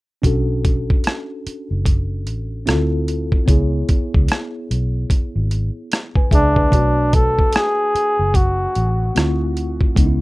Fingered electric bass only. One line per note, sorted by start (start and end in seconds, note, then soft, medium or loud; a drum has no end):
0.24 0.91 B1 medium
1.46 muted fingered electric bass stroke soft
1.71 2.27 F#1 medium
2.27 2.69 A1 medium
2.68 3.35 D2 medium
3.48 3.82 C#2 medium
4.15 4.27 C#2 medium
4.71 5.04 B1 medium
5.10 muted fingered electric bass stroke soft
5.36 5.69 G#1 medium
6.16 muted fingered electric bass stroke soft
6.32 6.65 C#2 medium
6.73 7.40 B1 medium
7.95 muted fingered electric bass stroke soft
8.19 8.66 F#1 medium
8.76 9.09 A1 medium
9.16 9.83 D2 medium
9.97 10.21 C#2 medium